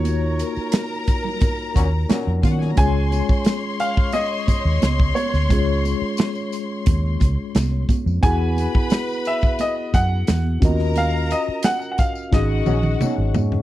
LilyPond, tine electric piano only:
\new Staff \with { instrumentName = "Tine electric piano" } { \time 4/4 \key des \major \tempo 4 = 88 <bes ees' f' ges' des''>2.~ <bes ees' f' ges' des''>8 r8 | <aes des' f' aes' des''>1 | <aes des' f' aes' des''>1 | <b e' fis' gis' fis''>2.~ <b e' fis' gis' fis''>8 <des' f' ges' bes' ees''>8~ |
<des' f' ges' bes' ees''>2 <des' ees' ges' aes' ees''>2 | }